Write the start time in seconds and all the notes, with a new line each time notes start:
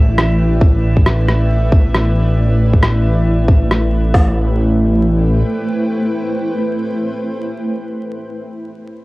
Already playing: A1 A3 E4 B4 D5 E5 G5
0.18 cross-stick
0.61 kick
0.97 kick
1.06 cross-stick
1.29 cross-stick
1.72 kick
1.94 cross-stick
2.73 kick
2.83 cross-stick
3.48 kick
3.71 cross-stick
4.14 A1 A3, kick, snare, open hi-hat
4.23 E4
4.31 B4
4.35 C5
4.43 G5